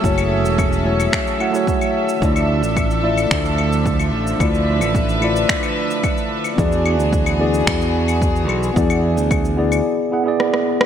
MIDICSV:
0, 0, Header, 1, 5, 480
1, 0, Start_track
1, 0, Tempo, 545455
1, 33, Time_signature, 4, 2, 24, 8
1, 9555, End_track
2, 0, Start_track
2, 0, Title_t, "Tine electric piano"
2, 0, Program_c, 0, 4
2, 0, Control_c, 0, 64, 127
2, 0, Note_on_c, 0, 57, 92
2, 0, Note_on_c, 0, 64, 78
2, 0, Note_on_c, 0, 66, 81
2, 0, Note_on_c, 0, 73, 94
2, 15, Note_off_c, 0, 57, 0
2, 15, Note_on_c, 0, 57, 89
2, 27, Note_off_c, 0, 64, 0
2, 27, Note_on_c, 0, 64, 79
2, 38, Note_off_c, 0, 66, 0
2, 38, Note_on_c, 0, 66, 84
2, 51, Note_off_c, 0, 73, 0
2, 51, Note_on_c, 0, 73, 100
2, 715, Note_off_c, 0, 57, 0
2, 721, Note_off_c, 0, 64, 0
2, 727, Note_off_c, 0, 66, 0
2, 733, Note_off_c, 0, 73, 0
2, 744, Note_on_c, 0, 57, 78
2, 749, Note_on_c, 0, 64, 72
2, 757, Note_on_c, 0, 66, 69
2, 762, Note_on_c, 0, 73, 82
2, 1205, Note_off_c, 0, 57, 0
2, 1207, Note_off_c, 0, 64, 0
2, 1211, Note_off_c, 0, 66, 0
2, 1214, Note_off_c, 0, 73, 0
2, 1222, Note_on_c, 0, 57, 76
2, 1230, Note_on_c, 0, 64, 71
2, 1235, Note_on_c, 0, 66, 66
2, 1241, Note_on_c, 0, 78, 86
2, 1319, Note_off_c, 0, 57, 0
2, 1323, Note_off_c, 0, 64, 0
2, 1325, Note_off_c, 0, 66, 0
2, 1328, Note_off_c, 0, 78, 0
2, 1335, Note_on_c, 0, 57, 91
2, 1347, Note_on_c, 0, 64, 85
2, 1360, Note_on_c, 0, 66, 85
2, 1372, Note_on_c, 0, 73, 102
2, 1915, Note_off_c, 0, 57, 0
2, 1921, Note_off_c, 0, 64, 0
2, 1927, Note_off_c, 0, 66, 0
2, 1934, Note_off_c, 0, 73, 0
2, 1935, Note_on_c, 0, 57, 82
2, 1948, Note_on_c, 0, 64, 75
2, 1959, Note_on_c, 0, 65, 73
2, 1963, Control_c, 0, 64, 0
2, 1973, Note_on_c, 0, 74, 89
2, 2116, Control_c, 0, 64, 127
2, 2635, Note_off_c, 0, 57, 0
2, 2642, Note_off_c, 0, 64, 0
2, 2647, Note_off_c, 0, 65, 0
2, 2654, Note_off_c, 0, 74, 0
2, 2664, Note_on_c, 0, 57, 89
2, 2670, Note_on_c, 0, 64, 80
2, 2676, Note_on_c, 0, 65, 83
2, 2682, Note_on_c, 0, 74, 96
2, 2775, Note_off_c, 0, 57, 0
2, 2778, Note_off_c, 0, 64, 0
2, 2781, Note_off_c, 0, 65, 0
2, 2784, Note_off_c, 0, 74, 0
2, 3856, Note_on_c, 0, 57, 90
2, 3868, Note_on_c, 0, 64, 80
2, 3880, Note_on_c, 0, 65, 80
2, 3893, Note_on_c, 0, 74, 99
2, 4555, Note_off_c, 0, 57, 0
2, 4562, Note_off_c, 0, 64, 0
2, 4567, Note_off_c, 0, 65, 0
2, 4574, Note_off_c, 0, 74, 0
2, 4576, Note_on_c, 0, 57, 84
2, 4589, Note_on_c, 0, 64, 78
2, 4602, Note_on_c, 0, 65, 79
2, 4613, Note_on_c, 0, 74, 95
2, 5755, Note_off_c, 0, 57, 0
2, 5762, Note_off_c, 0, 64, 0
2, 5769, Note_off_c, 0, 65, 0
2, 5773, Note_on_c, 0, 59, 84
2, 5774, Note_off_c, 0, 74, 0
2, 5785, Note_on_c, 0, 64, 76
2, 5798, Note_on_c, 0, 68, 77
2, 5806, Control_c, 0, 64, 0
2, 5811, Note_on_c, 0, 74, 96
2, 5971, Control_c, 0, 64, 127
2, 6474, Note_off_c, 0, 59, 0
2, 6480, Note_off_c, 0, 64, 0
2, 6487, Note_off_c, 0, 68, 0
2, 6493, Note_off_c, 0, 74, 0
2, 6504, Note_on_c, 0, 59, 91
2, 6510, Note_on_c, 0, 64, 79
2, 6516, Note_on_c, 0, 68, 87
2, 6522, Note_on_c, 0, 74, 96
2, 6615, Note_off_c, 0, 59, 0
2, 6618, Note_off_c, 0, 64, 0
2, 6621, Note_off_c, 0, 68, 0
2, 6624, Note_off_c, 0, 74, 0
2, 7691, Note_on_c, 0, 59, 89
2, 7705, Note_on_c, 0, 64, 80
2, 7716, Note_on_c, 0, 68, 83
2, 7728, Note_on_c, 0, 74, 96
2, 8393, Note_off_c, 0, 59, 0
2, 8400, Note_off_c, 0, 64, 0
2, 8405, Note_off_c, 0, 68, 0
2, 8412, Note_off_c, 0, 74, 0
2, 8419, Note_on_c, 0, 59, 81
2, 8425, Note_on_c, 0, 64, 82
2, 8432, Note_on_c, 0, 68, 74
2, 8438, Note_on_c, 0, 74, 97
2, 8882, Note_off_c, 0, 59, 0
2, 8885, Note_off_c, 0, 64, 0
2, 8888, Note_off_c, 0, 68, 0
2, 8892, Note_off_c, 0, 74, 0
2, 8899, Note_on_c, 0, 59, 78
2, 8906, Note_on_c, 0, 64, 76
2, 8913, Note_on_c, 0, 68, 74
2, 8918, Note_on_c, 0, 78, 91
2, 8997, Note_off_c, 0, 59, 0
2, 9001, Note_off_c, 0, 64, 0
2, 9004, Note_off_c, 0, 68, 0
2, 9007, Note_off_c, 0, 78, 0
2, 9010, Note_on_c, 0, 59, 98
2, 9024, Note_on_c, 0, 64, 83
2, 9036, Note_on_c, 0, 68, 84
2, 9048, Note_on_c, 0, 74, 105
2, 9555, Note_off_c, 0, 59, 0
2, 9555, Note_off_c, 0, 64, 0
2, 9555, Note_off_c, 0, 68, 0
2, 9555, Note_off_c, 0, 74, 0
2, 9555, End_track
3, 0, Start_track
3, 0, Title_t, "String section"
3, 0, Program_c, 1, 48
3, 0, Note_on_c, 1, 54, 76
3, 0, Note_on_c, 1, 61, 64
3, 0, Note_on_c, 1, 68, 67
3, 0, Note_on_c, 1, 69, 82
3, 0, Note_on_c, 1, 76, 69
3, 1917, Note_off_c, 1, 54, 0
3, 1917, Note_off_c, 1, 68, 0
3, 1918, Note_off_c, 1, 61, 0
3, 1918, Note_off_c, 1, 69, 0
3, 1950, Note_on_c, 1, 62, 73
3, 1952, Note_on_c, 1, 53, 68
3, 1952, Note_on_c, 1, 69, 85
3, 1953, Note_on_c, 1, 50, 77
3, 3853, Note_off_c, 1, 69, 0
3, 3875, Note_on_c, 1, 71, 86
3, 5757, Note_off_c, 1, 50, 0
3, 5757, Note_off_c, 1, 53, 0
3, 5757, Note_off_c, 1, 76, 0
3, 5775, Note_off_c, 1, 71, 0
3, 5793, Note_on_c, 1, 59, 67
3, 5793, Note_on_c, 1, 66, 68
3, 5793, Note_on_c, 1, 68, 86
3, 5794, Note_on_c, 1, 52, 81
3, 8636, Note_off_c, 1, 62, 0
3, 8644, Note_off_c, 1, 59, 0
3, 8644, Note_off_c, 1, 66, 0
3, 8644, Note_off_c, 1, 68, 0
3, 8645, Note_off_c, 1, 52, 0
3, 9555, End_track
4, 0, Start_track
4, 0, Title_t, "Fingered electric bass"
4, 0, Program_c, 2, 33
4, 33, Note_on_c, 2, 30, 87
4, 392, Note_off_c, 2, 30, 0
4, 392, Note_on_c, 2, 28, 77
4, 945, Note_off_c, 2, 28, 0
4, 1952, Note_on_c, 2, 38, 97
4, 2312, Note_off_c, 2, 38, 0
4, 2312, Note_on_c, 2, 33, 79
4, 2865, Note_off_c, 2, 33, 0
4, 2912, Note_on_c, 2, 38, 84
4, 3632, Note_off_c, 2, 38, 0
4, 3632, Note_on_c, 2, 33, 82
4, 3813, Note_off_c, 2, 33, 0
4, 3872, Note_on_c, 2, 38, 93
4, 4234, Note_off_c, 2, 38, 0
4, 4234, Note_on_c, 2, 33, 82
4, 4785, Note_off_c, 2, 33, 0
4, 5792, Note_on_c, 2, 40, 90
4, 6151, Note_off_c, 2, 40, 0
4, 6151, Note_on_c, 2, 38, 89
4, 6704, Note_off_c, 2, 38, 0
4, 6749, Note_on_c, 2, 40, 87
4, 7468, Note_off_c, 2, 40, 0
4, 7468, Note_on_c, 2, 35, 85
4, 7651, Note_off_c, 2, 35, 0
4, 7709, Note_on_c, 2, 40, 94
4, 8068, Note_off_c, 2, 40, 0
4, 8068, Note_on_c, 2, 38, 80
4, 8623, Note_off_c, 2, 38, 0
4, 9555, End_track
5, 0, Start_track
5, 0, Title_t, "Drums"
5, 33, Note_on_c, 9, 36, 95
5, 39, Note_on_c, 9, 82, 54
5, 121, Note_off_c, 9, 36, 0
5, 127, Note_off_c, 9, 82, 0
5, 156, Note_on_c, 9, 75, 75
5, 160, Note_on_c, 9, 82, 31
5, 244, Note_off_c, 9, 75, 0
5, 248, Note_off_c, 9, 82, 0
5, 400, Note_on_c, 9, 82, 60
5, 488, Note_off_c, 9, 82, 0
5, 513, Note_on_c, 9, 36, 102
5, 516, Note_on_c, 9, 75, 75
5, 520, Note_on_c, 9, 82, 52
5, 601, Note_off_c, 9, 36, 0
5, 604, Note_off_c, 9, 75, 0
5, 608, Note_off_c, 9, 82, 0
5, 640, Note_on_c, 9, 82, 33
5, 728, Note_off_c, 9, 82, 0
5, 877, Note_on_c, 9, 75, 74
5, 881, Note_on_c, 9, 82, 70
5, 965, Note_off_c, 9, 75, 0
5, 969, Note_off_c, 9, 82, 0
5, 993, Note_on_c, 9, 36, 105
5, 996, Note_on_c, 9, 26, 68
5, 1000, Note_on_c, 9, 82, 51
5, 1081, Note_off_c, 9, 36, 0
5, 1084, Note_off_c, 9, 26, 0
5, 1088, Note_off_c, 9, 82, 0
5, 1119, Note_on_c, 9, 82, 32
5, 1207, Note_off_c, 9, 82, 0
5, 1235, Note_on_c, 9, 75, 75
5, 1323, Note_off_c, 9, 75, 0
5, 1359, Note_on_c, 9, 82, 63
5, 1447, Note_off_c, 9, 82, 0
5, 1472, Note_on_c, 9, 36, 100
5, 1480, Note_on_c, 9, 82, 57
5, 1560, Note_off_c, 9, 36, 0
5, 1568, Note_off_c, 9, 82, 0
5, 1597, Note_on_c, 9, 75, 70
5, 1601, Note_on_c, 9, 82, 32
5, 1685, Note_off_c, 9, 75, 0
5, 1689, Note_off_c, 9, 82, 0
5, 1838, Note_on_c, 9, 82, 66
5, 1926, Note_off_c, 9, 82, 0
5, 1953, Note_on_c, 9, 36, 99
5, 1960, Note_on_c, 9, 82, 50
5, 2041, Note_off_c, 9, 36, 0
5, 2048, Note_off_c, 9, 82, 0
5, 2076, Note_on_c, 9, 75, 74
5, 2080, Note_on_c, 9, 82, 33
5, 2164, Note_off_c, 9, 75, 0
5, 2168, Note_off_c, 9, 82, 0
5, 2318, Note_on_c, 9, 82, 63
5, 2406, Note_off_c, 9, 82, 0
5, 2433, Note_on_c, 9, 36, 95
5, 2434, Note_on_c, 9, 75, 75
5, 2438, Note_on_c, 9, 82, 55
5, 2521, Note_off_c, 9, 36, 0
5, 2522, Note_off_c, 9, 75, 0
5, 2526, Note_off_c, 9, 82, 0
5, 2558, Note_on_c, 9, 82, 34
5, 2646, Note_off_c, 9, 82, 0
5, 2794, Note_on_c, 9, 75, 77
5, 2798, Note_on_c, 9, 82, 67
5, 2882, Note_off_c, 9, 75, 0
5, 2886, Note_off_c, 9, 82, 0
5, 2913, Note_on_c, 9, 36, 98
5, 2914, Note_on_c, 9, 26, 68
5, 2918, Note_on_c, 9, 82, 47
5, 3001, Note_off_c, 9, 36, 0
5, 3002, Note_off_c, 9, 26, 0
5, 3006, Note_off_c, 9, 82, 0
5, 3039, Note_on_c, 9, 82, 33
5, 3127, Note_off_c, 9, 82, 0
5, 3154, Note_on_c, 9, 75, 77
5, 3242, Note_off_c, 9, 75, 0
5, 3279, Note_on_c, 9, 82, 59
5, 3367, Note_off_c, 9, 82, 0
5, 3393, Note_on_c, 9, 36, 96
5, 3398, Note_on_c, 9, 82, 52
5, 3481, Note_off_c, 9, 36, 0
5, 3486, Note_off_c, 9, 82, 0
5, 3516, Note_on_c, 9, 75, 69
5, 3519, Note_on_c, 9, 82, 31
5, 3604, Note_off_c, 9, 75, 0
5, 3607, Note_off_c, 9, 82, 0
5, 3758, Note_on_c, 9, 82, 65
5, 3846, Note_off_c, 9, 82, 0
5, 3873, Note_on_c, 9, 36, 98
5, 3874, Note_on_c, 9, 75, 79
5, 3878, Note_on_c, 9, 82, 54
5, 3961, Note_off_c, 9, 36, 0
5, 3962, Note_off_c, 9, 75, 0
5, 3966, Note_off_c, 9, 82, 0
5, 3999, Note_on_c, 9, 82, 31
5, 4087, Note_off_c, 9, 82, 0
5, 4234, Note_on_c, 9, 75, 74
5, 4238, Note_on_c, 9, 82, 64
5, 4322, Note_off_c, 9, 75, 0
5, 4326, Note_off_c, 9, 82, 0
5, 4353, Note_on_c, 9, 36, 93
5, 4357, Note_on_c, 9, 82, 53
5, 4441, Note_off_c, 9, 36, 0
5, 4445, Note_off_c, 9, 82, 0
5, 4479, Note_on_c, 9, 82, 31
5, 4567, Note_off_c, 9, 82, 0
5, 4594, Note_on_c, 9, 75, 79
5, 4682, Note_off_c, 9, 75, 0
5, 4718, Note_on_c, 9, 82, 63
5, 4806, Note_off_c, 9, 82, 0
5, 4833, Note_on_c, 9, 26, 66
5, 4833, Note_on_c, 9, 36, 99
5, 4837, Note_on_c, 9, 82, 50
5, 4921, Note_off_c, 9, 26, 0
5, 4921, Note_off_c, 9, 36, 0
5, 4925, Note_off_c, 9, 82, 0
5, 4953, Note_on_c, 9, 75, 74
5, 4957, Note_on_c, 9, 82, 32
5, 5041, Note_off_c, 9, 75, 0
5, 5045, Note_off_c, 9, 82, 0
5, 5197, Note_on_c, 9, 82, 62
5, 5285, Note_off_c, 9, 82, 0
5, 5311, Note_on_c, 9, 75, 82
5, 5312, Note_on_c, 9, 36, 96
5, 5315, Note_on_c, 9, 82, 48
5, 5399, Note_off_c, 9, 75, 0
5, 5400, Note_off_c, 9, 36, 0
5, 5403, Note_off_c, 9, 82, 0
5, 5435, Note_on_c, 9, 82, 28
5, 5523, Note_off_c, 9, 82, 0
5, 5670, Note_on_c, 9, 75, 76
5, 5674, Note_on_c, 9, 82, 58
5, 5758, Note_off_c, 9, 75, 0
5, 5762, Note_off_c, 9, 82, 0
5, 5792, Note_on_c, 9, 36, 90
5, 5796, Note_on_c, 9, 82, 49
5, 5880, Note_off_c, 9, 36, 0
5, 5884, Note_off_c, 9, 82, 0
5, 5915, Note_on_c, 9, 82, 31
5, 6003, Note_off_c, 9, 82, 0
5, 6033, Note_on_c, 9, 75, 82
5, 6121, Note_off_c, 9, 75, 0
5, 6157, Note_on_c, 9, 82, 60
5, 6245, Note_off_c, 9, 82, 0
5, 6271, Note_on_c, 9, 36, 87
5, 6276, Note_on_c, 9, 82, 53
5, 6359, Note_off_c, 9, 36, 0
5, 6364, Note_off_c, 9, 82, 0
5, 6391, Note_on_c, 9, 75, 84
5, 6395, Note_on_c, 9, 82, 31
5, 6479, Note_off_c, 9, 75, 0
5, 6483, Note_off_c, 9, 82, 0
5, 6635, Note_on_c, 9, 82, 65
5, 6723, Note_off_c, 9, 82, 0
5, 6750, Note_on_c, 9, 36, 103
5, 6753, Note_on_c, 9, 26, 72
5, 6753, Note_on_c, 9, 75, 72
5, 6756, Note_on_c, 9, 82, 49
5, 6838, Note_off_c, 9, 36, 0
5, 6841, Note_off_c, 9, 26, 0
5, 6841, Note_off_c, 9, 75, 0
5, 6844, Note_off_c, 9, 82, 0
5, 6876, Note_on_c, 9, 82, 31
5, 6964, Note_off_c, 9, 82, 0
5, 7111, Note_on_c, 9, 75, 77
5, 7115, Note_on_c, 9, 82, 59
5, 7199, Note_off_c, 9, 75, 0
5, 7203, Note_off_c, 9, 82, 0
5, 7230, Note_on_c, 9, 36, 95
5, 7237, Note_on_c, 9, 82, 52
5, 7318, Note_off_c, 9, 36, 0
5, 7325, Note_off_c, 9, 82, 0
5, 7356, Note_on_c, 9, 82, 28
5, 7444, Note_off_c, 9, 82, 0
5, 7471, Note_on_c, 9, 75, 76
5, 7559, Note_off_c, 9, 75, 0
5, 7595, Note_on_c, 9, 82, 61
5, 7683, Note_off_c, 9, 82, 0
5, 7710, Note_on_c, 9, 36, 99
5, 7716, Note_on_c, 9, 82, 50
5, 7798, Note_off_c, 9, 36, 0
5, 7804, Note_off_c, 9, 82, 0
5, 7831, Note_on_c, 9, 75, 82
5, 7835, Note_on_c, 9, 82, 33
5, 7919, Note_off_c, 9, 75, 0
5, 7923, Note_off_c, 9, 82, 0
5, 8075, Note_on_c, 9, 82, 64
5, 8163, Note_off_c, 9, 82, 0
5, 8190, Note_on_c, 9, 36, 102
5, 8191, Note_on_c, 9, 75, 76
5, 8195, Note_on_c, 9, 82, 53
5, 8278, Note_off_c, 9, 36, 0
5, 8279, Note_off_c, 9, 75, 0
5, 8283, Note_off_c, 9, 82, 0
5, 8316, Note_on_c, 9, 82, 32
5, 8404, Note_off_c, 9, 82, 0
5, 8552, Note_on_c, 9, 75, 83
5, 8555, Note_on_c, 9, 82, 65
5, 8640, Note_off_c, 9, 75, 0
5, 8643, Note_off_c, 9, 82, 0
5, 9151, Note_on_c, 9, 37, 58
5, 9239, Note_off_c, 9, 37, 0
5, 9271, Note_on_c, 9, 37, 55
5, 9359, Note_off_c, 9, 37, 0
5, 9511, Note_on_c, 9, 37, 81
5, 9555, Note_off_c, 9, 37, 0
5, 9555, End_track
0, 0, End_of_file